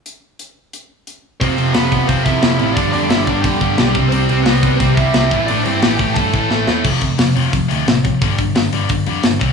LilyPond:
<<
  \new Staff \with { instrumentName = "Lead electric guitar" } { \time 4/4 \key f \lydian \tempo 4 = 176 r1 | <c' c''>4 <b b'>4 <c' c''>8 <e' e''>4. | <d' d''>8 <d' d''>8 <e' e''>8 <d' d''>8 <g' g''>4. r8 | <c' c''>4 <b b'>4 <c' c''>8 <e' e''>4. |
<d' d''>8 <c' c''>8 <g' g''>8 <g' g''>8 <a' a''>4. r8 | r1 | r1 | }
  \new Staff \with { instrumentName = "Overdriven electric guitar" } { \clef bass \time 4/4 \key f \lydian r1 | <f, c f>8 <f, c f>8 <f, c f>8 <f, c f>8 <f, c f>8 <f, c f>8 <f, c f>8 <f, c f>8 | <g, d g>8 <g, d g>8 <g, d g>8 <g, d g>8 <g, d g>8 <g, d g>8 <g, d g>8 <c g c'>8 | <c g c'>8 <c g c'>8 <c g c'>8 <c g c'>8 <c g c'>8 <c g c'>8 <c g c'>8 <a, e a>8 |
<a, e a>8 <a, e a>8 <a, e a>8 <a, e a>8 <a, e a>8 <a, e a>8 <a, e a>8 <a, e a>8 | r1 | r1 | }
  \new Staff \with { instrumentName = "Distorted electric guitar" } { \clef bass \time 4/4 \key f \lydian r1 | <f, c f>8 <f, c f>8 <f, c f>8 <f, c f>8 <f, c f>8 <f, c f>8 <f, c f>8 <f, c f>8 | <g, d g>8 <g, d g>8 <g, d g>8 <g, d g>8 <g, d g>8 <g, d g>8 <g, d g>8 <c g c'>8 | <c g c'>8 <c g c'>8 <c g c'>8 <c g c'>8 <c g c'>8 <c g c'>8 <c g c'>8 <a, e a>8 |
<a, e a>8 <a, e a>8 <a, e a>8 <a, e a>8 <a, e a>8 <a, e a>8 <a, e a>8 <a, e a>8 | <f, c f>8 <f, c>8 <f, c>8 <f, c f>8 <f, c>8 <f, c f>8 <f, c>8 <f, c>8 | <g, d g>8 <g, d>8 <g, d>8 <g, d g>8 <g, d>8 <g, d g>8 <g, d>8 <c g c'>8 | }
  \new Staff \with { instrumentName = "Picked electric bass" } { \clef bass \time 4/4 \key f \lydian r1 | f,,8 f,,8 f,,4 f,,4 f,,8 a,,8 | g,,8 f,8 g,,8 g,,8 f,8 g,,8 b,,8 c,8 | c,8 c,8 c,4 c,4 c,8 a,,8 |
a,,8 g,8 a,,8 a,,8 g,8 a,,8 a,,8 e,8 | f,,8 f,,8 f,,8 f,,8 f,,8 d,8 a,,4 | g,,8 g,,8 g,,8 g,,8 g,,8 f,8 g,,8 c,8 | }
  \new DrumStaff \with { instrumentName = "Drums" } \drummode { \time 4/4 hh4 hh4 hh4 hh4 | <hho bd>8 hho8 <hho sn>8 <hho bd>8 <hho bd>8 <hho bd>8 <hho sn>8 hho8 | <hho bd>8 hho8 <hho sn>8 <hho bd>8 <hho bd>8 <hho bd>8 <hho sn>8 <hho bd>8 | hho8 hho8 <hho sn>8 <hho bd>8 <hho bd>8 <hho bd>8 <hho sn>8 <hho bd>8 |
hho8 hho8 <hho sn>8 <hho bd>8 <hho bd>8 <hho bd>8 sn8 sn8 | <cymc bd>8 <hho bd>8 <hho sn>8 hho8 <hho bd>8 hho8 <hho sn>8 <hho bd>8 | <hho bd>8 <hho bd>8 <hho sn>8 hho8 <hho bd>8 hho8 <hho sn>8 <hho bd>8 | }
>>